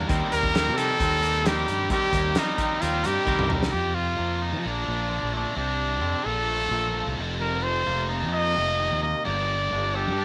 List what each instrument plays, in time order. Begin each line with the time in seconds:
Already playing: distorted electric guitar G3 A#3 D4, clean electric guitar A#4
0.07 fingered electric bass D#2, clean electric guitar D#3 G3 C4 G4 A#4, distorted electric guitar D#3, kick, closed hi-hat
0.30 fingered electric bass D#2, distorted electric guitar A#3, clean electric guitar C4 G4 A#4, trumpet A#4, closed hi-hat
0.43 kick
0.52 distorted electric guitar D#3, clean electric guitar G3 C4 G4 A#4, snare, clap, closed hi-hat
0.68 fingered electric bass C3
0.76 clean electric guitar D#3 G3 C4 G4 A#4, distorted electric guitar A#3, trumpet A4, closed hi-hat
0.97 fingered electric bass D#2, clean electric guitar G3 C4 G4 A#4, distorted electric guitar C4, kick, closed hi-hat
1.22 distorted electric guitar D#3, clean electric guitar C4 G4 A#4, closed hi-hat
1.44 clean electric guitar D#3 G3 C4 G4 A#4, distorted electric guitar A#3, trumpet G4, snare, clap, closed hi-hat
1.66 fingered electric bass G2, distorted electric guitar D#3, clean electric guitar C4 G4 A#4, closed hi-hat
1.90 clean electric guitar D#3 G3 C4 G4 A#4, distorted electric guitar D#3, trumpet G4, kick, closed hi-hat
2.13 fingered electric bass D#2, distorted electric guitar A#3, clean electric guitar C4 G4 A#4, kick, closed hi-hat
2.35 distorted electric guitar D#3, clean electric guitar G3 C4 G4 A#4, snare, clap, closed hi-hat
2.39 trumpet D#4
2.58 clean electric guitar D#3 G3 C4 G4 A#4, distorted electric guitar A#3, kick, closed hi-hat
2.81 fingered electric bass D#2, clean electric guitar G3 C4 G4 A#4, distorted electric guitar C4, trumpet F4, closed hi-hat
3.03 fingered electric bass G2, distorted electric guitar D#3, clean electric guitar C4 G4 A#4, trumpet G4, closed hi-hat
3.25 fingered electric bass C2, clean electric guitar D#3 G3 C4 G4 A#4, distorted electric guitar A#3, kick, clap
3.39 fingered electric bass C2, mid tom
3.48 distorted electric guitar D#3, clean electric guitar C4 G4 A#4, mid tom
3.63 snare
3.71 distorted electric guitar F2 C3 F3 C4, clean electric guitar F2, fingered electric bass F2, trumpet G4
3.76 distorted electric guitar F4
3.94 trumpet F4
4.18 fingered electric bass F2, clean electric guitar A#3
4.42 clean electric guitar D#4
4.53 fingered electric bass F3
4.63 fingered electric bass A#1, clean electric guitar A#2, distorted electric guitar A#2 D3 A#3 D4 F4
4.68 trumpet D4
4.87 fingered electric bass A#1, clean electric guitar A#2
5.10 clean electric guitar F3
5.23 fingered electric bass A#1
5.33 clean electric guitar A3, trumpet D4
5.55 fingered electric bass C2, distorted electric guitar C3 G3 C4 D4 G4, clean electric guitar C3, trumpet D4
6.01 fingered electric bass F2, clean electric guitar C4
6.24 fingered electric bass A#1, distorted electric guitar A#2 D3 D4 F4, clean electric guitar A#2, trumpet A4
6.48 clean electric guitar A3
6.71 fingered electric bass A#1, clean electric guitar A#2
6.94 clean electric guitar F3
7.07 fingered electric bass C2
7.17 fingered electric bass F1, distorted electric guitar F2 C3 F3 A3 C4, clean electric guitar F2
7.21 distorted electric guitar F4
7.40 clean electric guitar F2, trumpet A#4
7.63 trumpet C5
7.87 fingered electric bass F1, clean electric guitar A#3
8.09 distorted electric guitar F2 C3 F3 C4 F4, clean electric guitar D#4
8.22 fingered electric bass F2
8.33 clean electric guitar A#3, trumpet D#5
8.55 fingered electric bass F1, clean electric guitar C3
8.79 clean electric guitar D#3
8.92 fingered electric bass D#2
9.02 clean electric guitar A#3, trumpet D#5
9.25 fingered electric bass G1, distorted electric guitar G2 D3 G3 A#3 D4 G4, clean electric guitar G2, trumpet D5
9.72 fingered electric bass G1, clean electric guitar D4
9.95 trumpet G4, clean electric guitar A4
10.07 fingered electric bass G2
10.17 distorted electric guitar G2 D3 G3 A#3 D4 G4, clean electric guitar D4